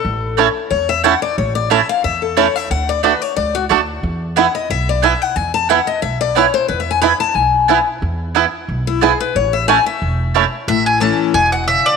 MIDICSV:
0, 0, Header, 1, 6, 480
1, 0, Start_track
1, 0, Key_signature, 3, "major"
1, 0, Tempo, 332410
1, 71, Time_signature, 4, 2, 24, 8
1, 17280, End_track
2, 0, Start_track
2, 0, Title_t, "Mandolin"
2, 0, Program_c, 0, 25
2, 15426, Note_on_c, 0, 76, 95
2, 15668, Note_off_c, 0, 76, 0
2, 15685, Note_on_c, 0, 80, 87
2, 15895, Note_off_c, 0, 80, 0
2, 15900, Note_on_c, 0, 81, 85
2, 16372, Note_off_c, 0, 81, 0
2, 16378, Note_on_c, 0, 80, 103
2, 16633, Note_off_c, 0, 80, 0
2, 16639, Note_on_c, 0, 78, 87
2, 16849, Note_off_c, 0, 78, 0
2, 16862, Note_on_c, 0, 76, 94
2, 17124, Note_on_c, 0, 74, 97
2, 17133, Note_off_c, 0, 76, 0
2, 17280, Note_off_c, 0, 74, 0
2, 17280, End_track
3, 0, Start_track
3, 0, Title_t, "Steel-string acoustic guitar"
3, 0, Program_c, 1, 25
3, 0, Note_on_c, 1, 69, 85
3, 502, Note_off_c, 1, 69, 0
3, 1018, Note_on_c, 1, 73, 90
3, 1275, Note_off_c, 1, 73, 0
3, 1285, Note_on_c, 1, 76, 100
3, 1496, Note_off_c, 1, 76, 0
3, 1502, Note_on_c, 1, 78, 110
3, 1757, Note_off_c, 1, 78, 0
3, 1763, Note_on_c, 1, 74, 103
3, 1979, Note_off_c, 1, 74, 0
3, 1993, Note_on_c, 1, 73, 81
3, 2234, Note_off_c, 1, 73, 0
3, 2240, Note_on_c, 1, 74, 96
3, 2458, Note_off_c, 1, 74, 0
3, 2472, Note_on_c, 1, 76, 92
3, 2722, Note_off_c, 1, 76, 0
3, 2733, Note_on_c, 1, 77, 109
3, 2942, Note_off_c, 1, 77, 0
3, 2947, Note_on_c, 1, 76, 94
3, 3200, Note_off_c, 1, 76, 0
3, 3204, Note_on_c, 1, 69, 54
3, 3420, Note_off_c, 1, 69, 0
3, 3426, Note_on_c, 1, 73, 88
3, 3690, Note_off_c, 1, 73, 0
3, 3690, Note_on_c, 1, 76, 101
3, 3903, Note_off_c, 1, 76, 0
3, 3911, Note_on_c, 1, 78, 101
3, 4162, Note_off_c, 1, 78, 0
3, 4173, Note_on_c, 1, 74, 98
3, 4377, Note_off_c, 1, 74, 0
3, 4383, Note_on_c, 1, 71, 96
3, 4644, Note_off_c, 1, 71, 0
3, 4644, Note_on_c, 1, 73, 92
3, 4852, Note_off_c, 1, 73, 0
3, 4858, Note_on_c, 1, 74, 102
3, 5115, Note_off_c, 1, 74, 0
3, 5122, Note_on_c, 1, 66, 98
3, 5256, Note_off_c, 1, 66, 0
3, 6306, Note_on_c, 1, 78, 92
3, 6559, Note_off_c, 1, 78, 0
3, 6567, Note_on_c, 1, 75, 85
3, 6782, Note_off_c, 1, 75, 0
3, 6793, Note_on_c, 1, 76, 104
3, 7043, Note_off_c, 1, 76, 0
3, 7063, Note_on_c, 1, 74, 90
3, 7270, Note_off_c, 1, 74, 0
3, 7270, Note_on_c, 1, 76, 85
3, 7533, Note_off_c, 1, 76, 0
3, 7533, Note_on_c, 1, 78, 90
3, 7737, Note_off_c, 1, 78, 0
3, 7737, Note_on_c, 1, 80, 81
3, 7994, Note_off_c, 1, 80, 0
3, 8000, Note_on_c, 1, 81, 119
3, 8218, Note_off_c, 1, 81, 0
3, 8227, Note_on_c, 1, 78, 93
3, 8478, Note_on_c, 1, 75, 97
3, 8480, Note_off_c, 1, 78, 0
3, 8689, Note_off_c, 1, 75, 0
3, 8694, Note_on_c, 1, 76, 99
3, 8954, Note_off_c, 1, 76, 0
3, 8963, Note_on_c, 1, 74, 96
3, 9189, Note_off_c, 1, 74, 0
3, 9189, Note_on_c, 1, 73, 83
3, 9441, Note_off_c, 1, 73, 0
3, 9441, Note_on_c, 1, 72, 90
3, 9646, Note_off_c, 1, 72, 0
3, 9652, Note_on_c, 1, 71, 74
3, 9816, Note_off_c, 1, 71, 0
3, 9816, Note_on_c, 1, 76, 81
3, 9973, Note_on_c, 1, 80, 93
3, 9978, Note_off_c, 1, 76, 0
3, 10124, Note_off_c, 1, 80, 0
3, 10130, Note_on_c, 1, 83, 107
3, 10391, Note_off_c, 1, 83, 0
3, 10397, Note_on_c, 1, 81, 104
3, 10609, Note_off_c, 1, 81, 0
3, 10609, Note_on_c, 1, 80, 90
3, 11359, Note_off_c, 1, 80, 0
3, 12812, Note_on_c, 1, 64, 88
3, 13024, Note_off_c, 1, 64, 0
3, 13034, Note_on_c, 1, 68, 86
3, 13283, Note_off_c, 1, 68, 0
3, 13291, Note_on_c, 1, 71, 95
3, 13503, Note_off_c, 1, 71, 0
3, 13513, Note_on_c, 1, 73, 92
3, 13762, Note_off_c, 1, 73, 0
3, 13763, Note_on_c, 1, 76, 94
3, 13972, Note_off_c, 1, 76, 0
3, 13977, Note_on_c, 1, 80, 114
3, 14234, Note_off_c, 1, 80, 0
3, 14243, Note_on_c, 1, 76, 93
3, 15258, Note_off_c, 1, 76, 0
3, 15425, Note_on_c, 1, 45, 81
3, 15888, Note_on_c, 1, 52, 85
3, 15900, Note_on_c, 1, 57, 92
3, 15913, Note_on_c, 1, 61, 98
3, 15915, Note_on_c, 1, 64, 94
3, 16343, Note_off_c, 1, 45, 0
3, 16356, Note_off_c, 1, 52, 0
3, 16362, Note_off_c, 1, 57, 0
3, 16369, Note_off_c, 1, 61, 0
3, 16370, Note_off_c, 1, 64, 0
3, 16377, Note_on_c, 1, 47, 93
3, 16841, Note_off_c, 1, 47, 0
3, 16859, Note_on_c, 1, 49, 87
3, 17280, Note_off_c, 1, 49, 0
3, 17280, End_track
4, 0, Start_track
4, 0, Title_t, "Mandolin"
4, 0, Program_c, 2, 25
4, 536, Note_on_c, 2, 57, 84
4, 543, Note_on_c, 2, 64, 88
4, 549, Note_on_c, 2, 73, 104
4, 554, Note_on_c, 2, 81, 86
4, 684, Note_off_c, 2, 57, 0
4, 688, Note_off_c, 2, 64, 0
4, 690, Note_off_c, 2, 73, 0
4, 693, Note_off_c, 2, 81, 0
4, 1494, Note_on_c, 2, 57, 88
4, 1502, Note_on_c, 2, 64, 92
4, 1505, Note_on_c, 2, 73, 97
4, 1509, Note_on_c, 2, 81, 102
4, 1643, Note_off_c, 2, 57, 0
4, 1647, Note_off_c, 2, 64, 0
4, 1648, Note_off_c, 2, 73, 0
4, 1650, Note_off_c, 2, 81, 0
4, 2455, Note_on_c, 2, 57, 97
4, 2460, Note_on_c, 2, 64, 95
4, 2466, Note_on_c, 2, 73, 100
4, 2470, Note_on_c, 2, 81, 108
4, 2603, Note_off_c, 2, 57, 0
4, 2606, Note_off_c, 2, 64, 0
4, 2609, Note_off_c, 2, 73, 0
4, 2611, Note_off_c, 2, 81, 0
4, 3416, Note_on_c, 2, 57, 91
4, 3420, Note_on_c, 2, 64, 98
4, 3425, Note_on_c, 2, 73, 92
4, 3432, Note_on_c, 2, 81, 107
4, 3564, Note_off_c, 2, 57, 0
4, 3566, Note_off_c, 2, 64, 0
4, 3568, Note_off_c, 2, 73, 0
4, 3571, Note_off_c, 2, 81, 0
4, 4375, Note_on_c, 2, 57, 88
4, 4382, Note_on_c, 2, 66, 88
4, 4388, Note_on_c, 2, 74, 93
4, 4391, Note_on_c, 2, 81, 89
4, 4523, Note_off_c, 2, 57, 0
4, 4527, Note_off_c, 2, 66, 0
4, 4529, Note_off_c, 2, 74, 0
4, 4531, Note_off_c, 2, 81, 0
4, 5333, Note_on_c, 2, 57, 90
4, 5340, Note_on_c, 2, 66, 95
4, 5346, Note_on_c, 2, 74, 98
4, 5351, Note_on_c, 2, 81, 100
4, 5482, Note_off_c, 2, 57, 0
4, 5485, Note_off_c, 2, 66, 0
4, 5489, Note_off_c, 2, 74, 0
4, 5491, Note_off_c, 2, 81, 0
4, 6297, Note_on_c, 2, 59, 84
4, 6305, Note_on_c, 2, 64, 96
4, 6311, Note_on_c, 2, 71, 96
4, 6315, Note_on_c, 2, 80, 95
4, 6444, Note_off_c, 2, 59, 0
4, 6448, Note_off_c, 2, 64, 0
4, 6451, Note_off_c, 2, 71, 0
4, 6453, Note_off_c, 2, 80, 0
4, 7253, Note_on_c, 2, 59, 84
4, 7258, Note_on_c, 2, 64, 90
4, 7262, Note_on_c, 2, 71, 102
4, 7268, Note_on_c, 2, 80, 103
4, 7403, Note_off_c, 2, 59, 0
4, 7405, Note_off_c, 2, 64, 0
4, 7407, Note_off_c, 2, 71, 0
4, 7410, Note_off_c, 2, 80, 0
4, 8214, Note_on_c, 2, 59, 89
4, 8221, Note_on_c, 2, 64, 90
4, 8225, Note_on_c, 2, 71, 93
4, 8231, Note_on_c, 2, 80, 94
4, 8363, Note_off_c, 2, 59, 0
4, 8366, Note_off_c, 2, 64, 0
4, 8368, Note_off_c, 2, 71, 0
4, 8371, Note_off_c, 2, 80, 0
4, 9171, Note_on_c, 2, 59, 82
4, 9181, Note_on_c, 2, 64, 96
4, 9185, Note_on_c, 2, 71, 95
4, 9190, Note_on_c, 2, 80, 104
4, 9321, Note_off_c, 2, 59, 0
4, 9326, Note_off_c, 2, 64, 0
4, 9328, Note_off_c, 2, 71, 0
4, 9331, Note_off_c, 2, 80, 0
4, 10131, Note_on_c, 2, 59, 88
4, 10139, Note_on_c, 2, 64, 86
4, 10145, Note_on_c, 2, 71, 85
4, 10145, Note_on_c, 2, 80, 110
4, 10281, Note_off_c, 2, 59, 0
4, 10285, Note_off_c, 2, 64, 0
4, 10288, Note_off_c, 2, 71, 0
4, 10288, Note_off_c, 2, 80, 0
4, 11094, Note_on_c, 2, 59, 93
4, 11099, Note_on_c, 2, 64, 83
4, 11103, Note_on_c, 2, 71, 92
4, 11107, Note_on_c, 2, 80, 96
4, 11242, Note_off_c, 2, 59, 0
4, 11245, Note_off_c, 2, 64, 0
4, 11247, Note_off_c, 2, 71, 0
4, 11249, Note_off_c, 2, 80, 0
4, 12053, Note_on_c, 2, 59, 91
4, 12057, Note_on_c, 2, 64, 95
4, 12064, Note_on_c, 2, 71, 90
4, 12069, Note_on_c, 2, 80, 94
4, 12202, Note_off_c, 2, 59, 0
4, 12204, Note_off_c, 2, 64, 0
4, 12207, Note_off_c, 2, 71, 0
4, 12210, Note_off_c, 2, 80, 0
4, 13015, Note_on_c, 2, 59, 82
4, 13020, Note_on_c, 2, 64, 87
4, 13026, Note_on_c, 2, 71, 93
4, 13034, Note_on_c, 2, 80, 99
4, 13163, Note_off_c, 2, 59, 0
4, 13165, Note_off_c, 2, 64, 0
4, 13168, Note_off_c, 2, 71, 0
4, 13172, Note_off_c, 2, 80, 0
4, 13979, Note_on_c, 2, 57, 90
4, 13986, Note_on_c, 2, 64, 95
4, 13991, Note_on_c, 2, 73, 96
4, 13996, Note_on_c, 2, 81, 96
4, 14124, Note_off_c, 2, 57, 0
4, 14128, Note_off_c, 2, 64, 0
4, 14130, Note_off_c, 2, 73, 0
4, 14133, Note_off_c, 2, 81, 0
4, 14937, Note_on_c, 2, 57, 86
4, 14944, Note_on_c, 2, 64, 99
4, 14950, Note_on_c, 2, 73, 92
4, 14954, Note_on_c, 2, 81, 97
4, 15083, Note_off_c, 2, 57, 0
4, 15087, Note_off_c, 2, 64, 0
4, 15090, Note_off_c, 2, 73, 0
4, 15092, Note_off_c, 2, 81, 0
4, 17280, End_track
5, 0, Start_track
5, 0, Title_t, "Five-string banjo"
5, 0, Program_c, 3, 105
5, 554, Note_on_c, 3, 57, 70
5, 562, Note_on_c, 3, 61, 70
5, 565, Note_on_c, 3, 64, 68
5, 667, Note_off_c, 3, 57, 0
5, 668, Note_off_c, 3, 61, 0
5, 671, Note_off_c, 3, 64, 0
5, 1516, Note_on_c, 3, 57, 68
5, 1522, Note_on_c, 3, 61, 68
5, 1529, Note_on_c, 3, 64, 65
5, 1627, Note_off_c, 3, 57, 0
5, 1630, Note_off_c, 3, 61, 0
5, 1632, Note_off_c, 3, 64, 0
5, 2469, Note_on_c, 3, 57, 69
5, 2480, Note_on_c, 3, 61, 69
5, 2483, Note_on_c, 3, 64, 71
5, 2585, Note_off_c, 3, 57, 0
5, 2586, Note_off_c, 3, 61, 0
5, 2590, Note_off_c, 3, 64, 0
5, 3428, Note_on_c, 3, 57, 67
5, 3439, Note_on_c, 3, 61, 68
5, 3439, Note_on_c, 3, 64, 64
5, 3544, Note_off_c, 3, 57, 0
5, 3547, Note_off_c, 3, 61, 0
5, 3548, Note_off_c, 3, 64, 0
5, 4392, Note_on_c, 3, 57, 70
5, 4396, Note_on_c, 3, 62, 71
5, 4404, Note_on_c, 3, 66, 69
5, 4505, Note_off_c, 3, 57, 0
5, 4508, Note_off_c, 3, 62, 0
5, 4509, Note_off_c, 3, 66, 0
5, 5357, Note_on_c, 3, 57, 68
5, 5363, Note_on_c, 3, 62, 68
5, 5366, Note_on_c, 3, 66, 72
5, 5468, Note_off_c, 3, 57, 0
5, 5469, Note_off_c, 3, 62, 0
5, 5472, Note_off_c, 3, 66, 0
5, 6321, Note_on_c, 3, 59, 71
5, 6330, Note_on_c, 3, 64, 71
5, 6335, Note_off_c, 3, 64, 0
5, 6335, Note_on_c, 3, 64, 67
5, 6364, Note_off_c, 3, 64, 0
5, 6431, Note_off_c, 3, 59, 0
5, 7277, Note_on_c, 3, 59, 65
5, 7282, Note_on_c, 3, 64, 64
5, 7295, Note_off_c, 3, 64, 0
5, 7295, Note_on_c, 3, 64, 68
5, 7389, Note_off_c, 3, 59, 0
5, 7392, Note_off_c, 3, 64, 0
5, 8238, Note_on_c, 3, 59, 74
5, 8242, Note_on_c, 3, 64, 72
5, 8245, Note_off_c, 3, 64, 0
5, 8245, Note_on_c, 3, 64, 68
5, 8348, Note_off_c, 3, 59, 0
5, 8351, Note_off_c, 3, 64, 0
5, 9200, Note_on_c, 3, 59, 64
5, 9205, Note_on_c, 3, 64, 70
5, 9213, Note_off_c, 3, 64, 0
5, 9213, Note_on_c, 3, 64, 72
5, 9309, Note_off_c, 3, 59, 0
5, 9313, Note_off_c, 3, 64, 0
5, 10156, Note_on_c, 3, 59, 71
5, 10162, Note_on_c, 3, 64, 70
5, 10167, Note_off_c, 3, 64, 0
5, 10167, Note_on_c, 3, 64, 70
5, 10267, Note_off_c, 3, 59, 0
5, 10271, Note_off_c, 3, 64, 0
5, 11117, Note_on_c, 3, 59, 68
5, 11123, Note_on_c, 3, 64, 70
5, 11131, Note_off_c, 3, 64, 0
5, 11131, Note_on_c, 3, 64, 67
5, 11228, Note_off_c, 3, 59, 0
5, 11233, Note_off_c, 3, 64, 0
5, 12070, Note_on_c, 3, 59, 68
5, 12079, Note_on_c, 3, 64, 72
5, 12081, Note_off_c, 3, 64, 0
5, 12081, Note_on_c, 3, 64, 73
5, 12110, Note_off_c, 3, 64, 0
5, 12185, Note_off_c, 3, 59, 0
5, 13038, Note_on_c, 3, 59, 70
5, 13046, Note_on_c, 3, 64, 68
5, 13047, Note_off_c, 3, 64, 0
5, 13047, Note_on_c, 3, 64, 69
5, 13148, Note_off_c, 3, 59, 0
5, 13152, Note_off_c, 3, 64, 0
5, 13993, Note_on_c, 3, 57, 67
5, 13998, Note_on_c, 3, 61, 71
5, 14002, Note_on_c, 3, 64, 71
5, 14105, Note_off_c, 3, 57, 0
5, 14105, Note_off_c, 3, 61, 0
5, 14109, Note_off_c, 3, 64, 0
5, 14955, Note_on_c, 3, 57, 69
5, 14961, Note_on_c, 3, 61, 68
5, 14967, Note_on_c, 3, 64, 71
5, 15066, Note_off_c, 3, 57, 0
5, 15067, Note_off_c, 3, 61, 0
5, 15071, Note_off_c, 3, 64, 0
5, 17280, End_track
6, 0, Start_track
6, 0, Title_t, "Upright bass"
6, 0, Program_c, 4, 32
6, 66, Note_on_c, 4, 33, 94
6, 674, Note_off_c, 4, 33, 0
6, 1025, Note_on_c, 4, 40, 90
6, 1633, Note_off_c, 4, 40, 0
6, 1990, Note_on_c, 4, 33, 97
6, 2597, Note_off_c, 4, 33, 0
6, 2948, Note_on_c, 4, 40, 82
6, 3556, Note_off_c, 4, 40, 0
6, 3905, Note_on_c, 4, 38, 96
6, 4513, Note_off_c, 4, 38, 0
6, 4869, Note_on_c, 4, 37, 89
6, 5277, Note_off_c, 4, 37, 0
6, 5349, Note_on_c, 4, 38, 85
6, 5757, Note_off_c, 4, 38, 0
6, 5822, Note_on_c, 4, 40, 96
6, 6432, Note_off_c, 4, 40, 0
6, 6783, Note_on_c, 4, 35, 83
6, 7392, Note_off_c, 4, 35, 0
6, 7741, Note_on_c, 4, 40, 96
6, 8351, Note_off_c, 4, 40, 0
6, 8700, Note_on_c, 4, 35, 83
6, 9310, Note_off_c, 4, 35, 0
6, 9662, Note_on_c, 4, 40, 98
6, 10271, Note_off_c, 4, 40, 0
6, 10612, Note_on_c, 4, 35, 82
6, 11224, Note_off_c, 4, 35, 0
6, 11581, Note_on_c, 4, 40, 96
6, 12190, Note_off_c, 4, 40, 0
6, 12540, Note_on_c, 4, 35, 88
6, 13150, Note_off_c, 4, 35, 0
6, 13506, Note_on_c, 4, 33, 96
6, 14114, Note_off_c, 4, 33, 0
6, 14466, Note_on_c, 4, 28, 90
6, 15074, Note_off_c, 4, 28, 0
6, 15419, Note_on_c, 4, 33, 95
6, 16029, Note_off_c, 4, 33, 0
6, 16375, Note_on_c, 4, 28, 86
6, 16987, Note_off_c, 4, 28, 0
6, 17280, End_track
0, 0, End_of_file